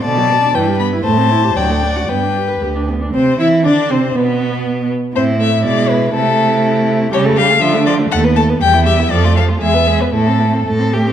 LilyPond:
<<
  \new Staff \with { instrumentName = "Violin" } { \time 2/4 \key g \major \tempo 4 = 120 a''4 g''8 b''8 | a''4 g''8. fis''16 | g''4 r4 | \key a \minor c''8 e''8 d''8 c''8 |
b'4. r8 | c''8 e''8 d''8 b'8 | a'4. r8 | cis''8 f''8 e''8 d''8 |
fis''8 a''8 g''8 e''8 | d''8 f''8 e''8. b'16 | a'4 r4 | }
  \new Staff \with { instrumentName = "Violin" } { \time 2/4 \key g \major d''4 b'4 | c''4 d''4 | b'4. r8 | \key a \minor c'8 e'8 d'8 c'8 |
b4. r8 | e'4 e'4 | e'2 | g'16 a'16 g'16 a'16 f'16 d'16 f'16 d'16 |
a'16 b'16 a'16 b'16 g'16 e'16 g'16 e'16 | a'16 f'16 a'16 f'16 gis'16 b'16 gis'16 b'16 | e'16 a'16 e'16 a'16 a'8 g'8 | }
  \new Staff \with { instrumentName = "Viola" } { \time 2/4 \key g \major d16 fis16 b16 d'16 e16 g16 b16 e'16 | a16 c'16 e'16 g'16 fis16 a16 d'16 fis'16 | b16 d'16 g'16 b'16 g'16 d'16 b16 d'16 | \key a \minor c'8 e'8 d'8 c'8 |
b4. r8 | c'8 a8 gis4 | a2 | g16 a16 g16 a16 f16 a16 f16 a16 |
a16 b16 a16 b16 g16 b16 g16 b16 | f16 a16 f16 a16 gis16 b16 gis16 b16 | a16 c'16 a16 c'16 a16 c'16 a16 c'16 | }
  \new Staff \with { instrumentName = "Cello" } { \clef bass \time 2/4 \key g \major b,4 g,4 | a,4 d,4 | g,4 d,4 | \key a \minor c8 e8 d8 c8 |
b,4. r8 | a,4 b,4 | c2 | cis4 d4 |
dis,4 e,4 | f,4 e,4 | a,4 a,4 | }
>>